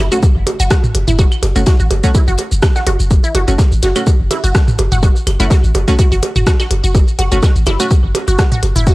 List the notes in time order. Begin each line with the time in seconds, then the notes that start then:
Already playing: impact
0.12 A3 C#4 F#4, closed hi-hat, shaker
0.23 kick, closed hi-hat, percussion blips, shaker
0.36 F#1
0.47 closed hi-hat, percussion blips
0.59 F#1 F#4, closed hi-hat, shaker
0.70 F#4, kick, cross-stick, snare, closed hi-hat, percussion blips, shaker
0.84 mid tom, shaker
0.95 F#1, closed hi-hat, percussion blips
1.08 F#1 E4, mid tom, shaker
1.19 F#4, kick, closed hi-hat, percussion blips, shaker
1.32 claves, shaker
1.42 F#1, snare, closed hi-hat, percussion blips
1.56 F#1 A3 C#4 F#4, closed hi-hat, shaker
1.66 F#4, kick, snare, closed hi-hat, percussion blips, shaker
1.80 A1 F#4, shaker
1.91 F#1, closed hi-hat, percussion blips
2.03 A3 C#4 F#4, kick, snare, closed hi-hat, shaker
2.15 E4, kick, closed hi-hat, percussion blips, shaker
2.28 F#1 F#4, closed hi-hat, shaker
2.38 closed hi-hat, percussion blips
2.52 F#1, shaker
2.62 kick, cross-stick, snare, closed hi-hat, percussion blips, claves, shaker
2.76 F#4, snare, shaker
2.87 F#1 F#4, closed hi-hat, percussion blips
3.00 F#1, shaker
3.11 kick, closed hi-hat, percussion blips, shaker
3.24 E4, shaker
3.35 F#1 F#4, closed hi-hat, percussion blips
3.48 F#1 A3 C#4 F#4, closed hi-hat, shaker
3.58 kick, snare, closed hi-hat, percussion blips, shaker
3.72 A1, shaker
3.82 F#1 F#4, snare, closed hi-hat, percussion blips
3.96 A3 C#4 F#4, closed hi-hat, claves, shaker
4.07 kick, closed hi-hat, percussion blips, shaker
4.20 F#1
4.31 E4, closed hi-hat, percussion blips
4.44 F#1 F#4, closed hi-hat, shaker
4.55 kick, cross-stick, snare, closed hi-hat, percussion blips, shaker
4.68 mid tom, shaker
4.78 F#1, closed hi-hat, percussion blips
4.92 F#1 F#4, mid tom, shaker
5.03 F#4, kick, closed hi-hat, percussion blips, shaker
5.16 shaker
5.27 F#1, snare, closed hi-hat, percussion blips, claves
5.40 F#1 A3 C#4 E4 F#4, closed hi-hat, shaker
5.50 F#4, kick, snare, closed hi-hat, percussion blips, shaker
5.64 A1, shaker
5.74 F#1, closed hi-hat, percussion blips
5.88 A3 C#4 F#4, kick, snare, closed hi-hat, shaker
5.99 F#4, kick, closed hi-hat, percussion blips, shaker
6.12 F#1 F#4, closed hi-hat, shaker
6.22 closed hi-hat, percussion blips
6.36 F#1 F#4, mid tom, shaker
6.47 F#4, kick, cross-stick, snare, closed hi-hat, percussion blips, shaker
6.60 F#4, snare, claves, shaker
6.71 F#1, closed hi-hat, percussion blips
6.84 F#1 F#4, shaker
6.94 kick, closed hi-hat, percussion blips, shaker
7.08 shaker
7.19 F#1 F#4, closed hi-hat, percussion blips
7.32 F#1 A3 C#4 F#4, closed hi-hat, shaker
7.43 F#4, kick, snare, closed hi-hat, percussion blips, shaker
7.56 A1, shaker
7.66 F#1 E4, snare, closed hi-hat, percussion blips, claves
7.80 A3 C#4 F#4, closed hi-hat, shaker
7.91 kick, closed hi-hat, percussion blips, shaker
8.04 F#1
8.15 closed hi-hat, percussion blips
8.28 F#1 F#4, closed hi-hat, shaker
8.39 F#4, kick, cross-stick, snare, closed hi-hat, percussion blips, shaker
8.52 F#4, mid tom, shaker
8.63 F#1, closed hi-hat, percussion blips
8.76 F#1 E4, mid tom, shaker
8.87 F#4, kick, closed hi-hat, percussion blips, shaker